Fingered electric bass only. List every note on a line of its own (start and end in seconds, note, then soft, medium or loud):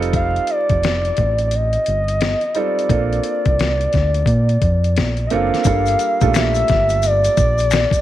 0.00 0.38 F1 medium
0.71 1.10 F1 medium
1.19 1.76 A1 medium
1.88 2.33 G1 medium
2.90 3.19 A#1 medium
3.47 3.86 C2 medium
3.95 4.23 D2 medium
4.27 4.56 A#2 medium
4.63 5.00 F2 medium
4.99 5.26 A#1 medium
5.33 5.50 F#1 medium
5.66 5.95 G1 loud
6.23 6.62 A#1 medium
6.71 7.27 G1 medium
7.39 7.85 A#1 medium